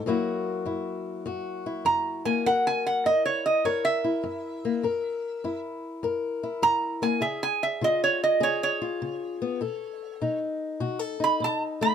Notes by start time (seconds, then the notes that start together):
0.06 F#2 F#3 A#3 E4 F#4
0.66 F#2 E4
1.26 F#2 F#4
1.66 E4
1.85 F#2 A#5
2.25 A#3 G#5
2.46 F#2 A#4 F#5
2.67 G#5
2.87 F#5
3.05 F#2 E4 D#5
3.25 C#5
3.46 D#5
3.65 F#2 A#4 C#5
3.85 E5
4.04 E4
4.24 F#2
4.65 A#3
4.83 F#2 A#4
5.44 F#2 E4
6.03 F#2 A#4
6.43 E4
6.62 F#2 A#5
7.02 A#3 G#5
7.21 C#3 G#4 E5
7.43 G#5
7.63 E5
7.81 C#3 F4 D#5
8.04 C#5
8.24 D#5
8.40 C#3 G#4 C#5
8.63 C#5
8.82 F4
9.02 C#3
9.42 B3
9.61 B2 A4
10.21 B2 D#4
10.80 B2 F#4
10.99 A4
11.20 D#4 B5
11.40 B2
11.44 A5
11.81 A3 B5